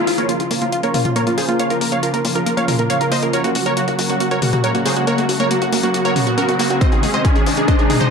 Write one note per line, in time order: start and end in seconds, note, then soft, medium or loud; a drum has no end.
0.00 riser medium
0.07 0.15 A#1 loud
0.07 0.15 F4 medium
0.07 0.17 F4 medium
0.07 open hi-hat medium
0.18 0.25 A#1 medium
0.18 0.33 C#3 medium
0.18 0.33 F3 medium
0.18 0.27 A#3 medium
0.18 0.33 A#3 medium
0.18 0.33 F4 medium
0.18 0.26 A#4 medium
0.18 0.26 C#5 medium
0.18 closed hi-hat medium
0.29 0.33 A#3 medium
0.29 0.37 F4 medium
0.29 closed hi-hat medium
0.40 0.47 A#1 medium
0.40 0.49 F4 medium
0.40 0.48 F4 medium
0.40 closed hi-hat medium
0.51 0.58 A#2 medium
0.51 0.66 C#3 medium
0.51 0.66 F3 medium
0.51 0.60 A#3 medium
0.51 0.66 A#3 medium
0.51 0.66 F4 medium
0.51 open hi-hat loud
0.62 0.69 A#1 medium
0.62 0.65 A#3 medium
0.62 0.69 F4 medium
0.62 closed hi-hat medium
0.72 0.82 F4 medium
0.72 0.80 F4 medium
0.72 closed hi-hat medium
0.83 0.91 A#1 medium
0.83 0.99 C#3 medium
0.83 0.99 F3 medium
0.83 0.99 A#3 medium
0.83 0.93 A#3 medium
0.83 0.99 F4 medium
0.83 0.91 A#4 medium
0.83 0.91 C#5 medium
0.83 closed hi-hat soft
0.94 1.01 A#1 medium
0.94 0.98 A#3 medium
0.94 1.02 F4 medium
0.94 open hi-hat loud
0.94 mid tom medium
1.05 1.12 A#1 medium
1.05 1.13 F4 medium
1.05 1.14 F4 medium
1.05 closed hi-hat medium
1.05 mid tom medium
1.16 1.24 C#3 medium
1.16 1.24 F3 medium
1.16 1.25 A#3 medium
1.16 1.24 A#3 medium
1.16 1.24 F4 medium
1.16 1.24 A#4 medium
1.16 1.24 C#5 medium
1.16 closed hi-hat medium
1.27 1.34 A#1 medium
1.27 1.42 C#3 medium
1.27 1.42 F3 medium
1.27 1.31 A#3 medium
1.27 1.42 A#3 medium
1.27 1.35 F4 medium
1.27 1.42 F4 medium
1.27 closed hi-hat medium
1.38 1.45 A#1 loud
1.38 1.47 F4 medium
1.38 1.45 G#4 medium
1.38 1.45 C5 medium
1.38 open hi-hat loud
1.48 1.56 A#1 medium
1.48 1.56 C#3 medium
1.48 1.56 F3 medium
1.48 1.58 A#3 medium
1.48 1.56 A#3 medium
1.48 1.56 F4 medium
1.48 closed hi-hat medium
1.59 1.75 C#3 medium
1.59 1.75 F3 medium
1.59 1.63 A#3 medium
1.59 1.75 A#3 medium
1.59 1.75 F4 medium
1.59 1.67 C#5 medium
1.59 1.67 F5 loud
1.59 closed hi-hat medium
1.70 1.78 A#1 medium
1.70 1.80 F4 medium
1.70 1.78 A#4 medium
1.70 closed hi-hat soft
1.81 1.88 A#1 medium
1.81 1.90 A#3 medium
1.81 1.89 A#4 medium
1.81 open hi-hat loud
1.92 1.99 A#1 medium
1.92 2.07 C#3 medium
1.92 2.07 F3 medium
1.92 1.96 A#3 medium
1.92 2.07 A#3 medium
1.92 2.07 F4 medium
1.92 2.00 C#5 medium
1.92 2.00 F5 medium
1.92 closed hi-hat medium
2.03 2.12 F4 medium
2.03 2.11 A#4 medium
2.03 closed hi-hat medium
2.14 2.21 A#1 medium
2.14 2.23 A#3 medium
2.14 2.21 A#4 medium
2.14 closed hi-hat medium
2.25 2.32 A#2 loud
2.25 2.40 C#3 medium
2.25 2.40 F3 medium
2.25 2.40 A#3 medium
2.25 2.28 A#3 medium
2.25 2.40 F4 medium
2.25 open hi-hat loud
2.35 2.43 A#1 medium
2.35 2.45 F4 medium
2.35 2.43 A#4 medium
2.35 closed hi-hat medium
2.46 2.56 A#3 medium
2.46 2.54 A#4 medium
2.46 closed hi-hat medium
2.57 2.65 A#1 medium
2.57 2.73 C#3 medium
2.57 2.73 F3 medium
2.57 2.61 A#3 medium
2.57 2.73 A#3 medium
2.57 2.73 F4 medium
2.57 2.65 C#5 medium
2.57 2.65 F5 medium
2.57 closed hi-hat soft
2.68 2.75 A#1 medium
2.68 2.78 F4 medium
2.68 2.76 A#4 medium
2.68 open hi-hat loud
2.68 mid tom medium
2.79 2.86 A#1 medium
2.79 2.88 A#3 medium
2.79 2.87 A#4 medium
2.79 closed hi-hat soft
2.90 2.98 C#3 medium
2.90 2.98 F3 medium
2.90 2.94 A#3 medium
2.90 2.98 A#3 medium
2.90 2.98 F4 medium
2.90 2.98 C#5 medium
2.90 2.98 F5 medium
2.90 closed hi-hat medium
3.01 3.08 A#1 medium
3.01 3.16 C#3 medium
3.01 3.16 F3 medium
3.01 3.16 A#3 medium
3.01 3.10 F4 medium
3.01 3.16 F4 medium
3.01 3.08 A#4 medium
3.01 closed hi-hat medium
3.12 3.19 A#1 loud
3.12 3.21 A#3 medium
3.12 3.19 C5 medium
3.12 3.19 D#5 medium
3.12 open hi-hat loud
3.22 3.30 A#1 medium
3.22 3.30 C#3 medium
3.22 3.30 F3 medium
3.22 3.26 A#3 medium
3.22 3.30 A#3 medium
3.22 3.30 F4 medium
3.22 3.30 A#4 medium
3.22 closed hi-hat medium
3.33 3.49 C#3 medium
3.33 3.49 F#3 medium
3.33 3.49 A#3 medium
3.33 3.49 F#4 medium
3.33 3.43 F#4 medium
3.33 3.41 A#4 medium
3.33 3.41 C#5 loud
3.33 closed hi-hat medium
3.44 3.52 F#1 medium
3.44 3.54 A#3 medium
3.44 3.52 F#4 medium
3.44 closed hi-hat soft
3.55 3.62 F#1 loud
3.55 3.59 A#3 medium
3.55 3.63 F#4 medium
3.55 open hi-hat loud
3.66 3.73 F#1 medium
3.66 3.81 C#3 medium
3.66 3.81 F#3 medium
3.66 3.81 A#3 medium
3.66 3.75 F#4 medium
3.66 3.81 F#4 medium
3.66 3.74 A#4 medium
3.66 3.74 C#5 medium
3.66 closed hi-hat soft
3.77 3.86 A#3 medium
3.77 3.85 F#4 medium
3.77 closed hi-hat medium
3.88 3.95 F#1 medium
3.88 3.92 A#3 medium
3.88 3.96 F#4 medium
3.88 closed hi-hat soft
3.99 4.06 F#2 loud
3.99 4.14 C#3 medium
3.99 4.14 F#3 medium
3.99 4.14 A#3 medium
3.99 4.14 F#4 medium
3.99 4.08 F#4 medium
3.99 open hi-hat loud
4.09 4.17 F#1 medium
4.09 4.19 A#3 medium
4.09 4.17 F#4 medium
4.09 closed hi-hat soft
4.20 4.24 A#3 medium
4.20 4.28 F#4 medium
4.20 closed hi-hat medium
4.31 4.38 F#1 medium
4.31 4.47 C#3 medium
4.31 4.47 F#3 medium
4.31 4.47 A#3 medium
4.31 4.41 F#4 medium
4.31 4.47 F#4 medium
4.31 4.39 A#4 medium
4.31 4.39 C#5 medium
4.31 closed hi-hat soft
4.42 4.49 F#1 medium
4.42 4.51 A#3 medium
4.42 4.50 F#4 medium
4.42 open hi-hat loud
4.42 mid tom medium
4.53 4.60 F#1 medium
4.53 4.57 A#3 medium
4.53 4.61 F#4 medium
4.53 closed hi-hat soft
4.53 mid tom medium
4.64 4.72 C#3 medium
4.64 4.72 F#3 medium
4.64 4.72 A#3 medium
4.64 4.73 F#4 medium
4.64 4.72 F#4 medium
4.64 4.72 A#4 medium
4.64 4.72 C#5 medium
4.64 closed hi-hat medium
4.75 4.82 F#1 medium
4.75 4.90 C#3 medium
4.75 4.90 F#3 medium
4.75 4.84 A#3 medium
4.75 4.90 A#3 medium
4.75 4.82 F#4 medium
4.75 4.90 F#4 medium
4.75 closed hi-hat soft
4.85 4.93 F#1 loud
4.85 4.89 A#3 medium
4.85 4.93 G#4 medium
4.85 4.93 C5 medium
4.85 open hi-hat loud
4.96 5.04 F#1 medium
4.96 5.04 C#3 medium
4.96 5.04 F#3 medium
4.96 5.04 A#3 medium
4.96 5.04 F#4 medium
4.96 5.06 F#4 medium
4.96 5.04 F#4 medium
4.96 closed hi-hat medium
5.07 5.23 C#3 medium
5.07 5.23 F#3 medium
5.07 5.17 A#3 medium
5.07 5.23 A#3 medium
5.07 5.23 F#4 medium
5.07 5.15 A#4 medium
5.07 5.15 C#5 loud
5.07 closed hi-hat medium
5.18 5.25 F#1 medium
5.18 5.22 A#3 medium
5.18 5.26 F#4 medium
5.18 closed hi-hat soft
5.29 5.36 F#1 loud
5.29 5.37 F#4 medium
5.29 5.38 F#4 medium
5.29 open hi-hat loud
5.40 5.47 F#1 medium
5.40 5.55 C#3 medium
5.40 5.55 F#3 medium
5.40 5.55 A#3 medium
5.40 5.49 A#3 medium
5.40 5.55 F#4 medium
5.40 5.48 A#4 medium
5.40 5.48 C#5 loud
5.40 closed hi-hat soft
5.51 5.55 A#3 medium
5.51 5.58 F#4 medium
5.51 closed hi-hat medium
5.62 5.69 F#1 medium
5.62 5.69 F#4 medium
5.62 5.71 F#4 medium
5.62 closed hi-hat soft
5.73 5.80 F#2 loud
5.73 5.88 C#3 medium
5.73 5.88 F#3 medium
5.73 5.82 A#3 medium
5.73 5.88 A#3 medium
5.73 5.88 F#4 medium
5.73 open hi-hat loud
5.83 5.91 F#1 medium
5.83 5.87 A#3 medium
5.83 5.91 F#4 medium
5.83 closed hi-hat soft
5.94 6.02 F#4 medium
5.94 6.04 F#4 medium
5.94 closed hi-hat medium
6.05 6.12 F#1 medium
6.05 6.20 C#3 medium
6.05 6.20 F#3 medium
6.05 6.20 A#3 medium
6.05 6.14 A#3 medium
6.05 6.20 F#4 medium
6.05 6.13 A#4 medium
6.05 6.13 C#5 medium
6.05 closed hi-hat soft
6.16 6.23 F#1 medium
6.16 6.25 C#4 medium
6.16 6.24 F#4 medium
6.16 open hi-hat loud
6.16 mid tom medium
6.27 6.34 F#1 medium
6.27 6.35 F#4 medium
6.27 6.36 F#4 loud
6.27 closed hi-hat soft
6.38 6.45 C#3 medium
6.38 6.45 F#3 medium
6.38 6.45 A#3 medium
6.38 6.44 C#4 medium
6.38 6.45 F#4 medium
6.38 6.45 A#4 medium
6.38 closed hi-hat medium
6.48 6.56 F#2 medium
6.48 6.64 C#3 medium
6.48 6.64 F#3 medium
6.48 6.64 A#3 medium
6.48 6.56 F#4 medium
6.48 6.64 F#4 medium
6.48 6.58 F#5 medium
6.48 closed hi-hat soft
6.59 6.67 F#1 loud
6.59 6.67 A#3 medium
6.59 6.63 A#3 medium
6.59 6.67 F#4 medium
6.59 open hi-hat loud
6.70 6.78 F#2 medium
6.70 6.78 C#3 medium
6.70 6.78 F#3 medium
6.70 6.78 A#3 medium
6.70 6.78 F#4 medium
6.70 6.77 F#4 medium
6.70 6.78 F#4 medium
6.70 closed hi-hat soft
6.81 6.97 C3 medium
6.81 6.97 D#3 medium
6.81 6.85 G#3 medium
6.81 6.97 G#3 medium
6.81 6.97 D#4 medium
6.81 6.89 C5 medium
6.81 6.89 D#5 medium
6.81 kick loud
6.81 closed hi-hat medium
6.92 6.99 G#1 medium
6.92 7.01 D#4 medium
6.92 7.00 G#4 medium
6.92 closed hi-hat soft
7.03 7.10 G#1 loud
7.03 7.12 G#3 medium
7.03 7.11 G#4 medium
7.03 open hi-hat loud
7.14 7.21 G#1 medium
7.14 7.29 C3 medium
7.14 7.29 D#3 medium
7.14 7.18 G#3 medium
7.14 7.29 G#3 medium
7.14 7.29 D#4 medium
7.14 7.22 C5 medium
7.14 7.22 D#5 medium
7.14 closed hi-hat soft
7.25 7.34 D#4 medium
7.25 7.32 G#4 medium
7.25 kick loud
7.25 closed hi-hat medium
7.35 7.43 G#1 medium
7.35 7.45 G#3 medium
7.35 7.43 G#4 medium
7.35 closed hi-hat soft
7.46 7.54 G#2 loud
7.46 7.62 C3 medium
7.46 7.62 D#3 medium
7.46 7.50 G#3 medium
7.46 7.62 G#3 medium
7.46 7.62 D#4 medium
7.46 open hi-hat loud
7.57 7.65 G#1 medium
7.57 7.66 D#4 medium
7.57 7.65 G#4 medium
7.57 closed hi-hat soft
7.68 7.72 G#3 medium
7.68 7.76 C5 medium
7.68 7.76 D#5 medium
7.68 kick loud
7.68 closed hi-hat medium
7.79 7.86 G#1 medium
7.79 7.94 C3 medium
7.79 7.94 D#3 medium
7.79 7.94 G#3 medium
7.79 7.94 D#4 medium
7.79 7.88 D#4 medium
7.79 7.87 G#4 medium
7.79 closed hi-hat soft
7.90 7.97 G#1 loud
7.90 7.99 G#3 medium
7.90 7.98 G#4 medium
7.90 open hi-hat loud
7.90 mid tom medium
8.01 8.08 G#1 medium
8.01 8.05 G#3 medium
8.01 8.08 C5 medium
8.01 8.08 D#5 medium
8.01 closed hi-hat soft
8.01 mid tom medium